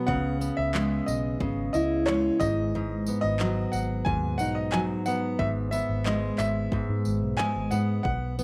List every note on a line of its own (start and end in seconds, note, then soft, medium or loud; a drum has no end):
0.00 0.16 B2 medium
0.00 0.16 F#3 medium
0.00 0.40 B3 medium
0.00 0.15 D#4 medium
0.07 0.49 C#2 loud
0.07 1.39 C#3 loud
0.07 0.54 F#5 loud
0.07 kick loud
0.41 3.08 B3 medium
0.41 tambourine medium
0.57 0.99 C#2 medium
0.57 1.04 E5 loud
0.74 2.08 G#3 medium
0.74 clap loud
1.06 1.36 B1 medium
1.06 1.70 D#5 medium
1.06 tambourine medium
1.40 1.68 G#1 medium
1.40 2.47 C#3 medium
1.40 kick loud
1.73 2.29 C#2 medium
1.73 2.48 E4 medium
1.73 2.08 D#5 medium
1.73 tambourine medium
2.06 3.40 G#3 medium
2.06 2.41 C#5 loud
2.06 clap loud
2.40 3.09 G#1 loud
2.40 2.74 G#2 medium
2.40 3.20 D#5 loud
2.40 kick loud
2.40 tambourine medium
2.75 4.06 G#2 medium
3.07 5.07 B3 medium
3.07 tambourine medium
3.21 3.65 G#1 medium
3.21 3.74 D#5 loud
3.39 4.72 F#3 medium
3.39 clap loud
3.72 4.01 G#1 medium
3.72 4.07 F#5 medium
3.72 tambourine medium
4.05 4.40 D#2 medium
4.05 5.38 G#2 medium
4.05 4.37 G#5 loud
4.05 kick loud
4.38 4.95 B1 medium
4.38 7.90 D#4 medium
4.38 4.54 F#5 loud
4.38 tambourine medium
4.55 4.73 D#5 medium
4.72 5.47 F#3 medium
4.72 4.80 G#5 medium
4.72 clap loud
5.06 5.72 B3 medium
5.06 5.40 F#5 loud
5.06 tambourine medium
5.39 5.81 G#1 loud
5.39 6.72 G#2 medium
5.39 5.46 E5 loud
5.39 kick loud
5.71 7.71 B3 medium
5.71 6.03 E5 loud
5.71 tambourine medium
5.89 6.30 G#1 medium
6.05 7.38 G#3 medium
6.05 6.40 D#5 medium
6.05 clap loud
6.38 6.67 G#1 medium
6.38 7.41 E5 medium
6.38 clap medium
6.38 tambourine medium
6.72 8.05 G#2 medium
6.72 kick loud
6.89 7.03 G#2 medium
7.05 7.20 G#1 medium
7.05 tambourine medium
7.22 7.36 B1 medium
7.37 8.12 G#3 medium
7.37 7.72 G#5 loud
7.37 muted fingered electric bass stroke soft
7.37 clap loud
7.56 7.69 G#1 medium
7.71 7.99 G#2 medium
7.71 8.38 B3 medium
7.71 8.02 F#5 medium
7.71 tambourine medium
8.03 8.44 B1 loud
8.03 8.44 F#5 medium
8.03 kick loud
8.39 8.44 B3 medium
8.39 tambourine medium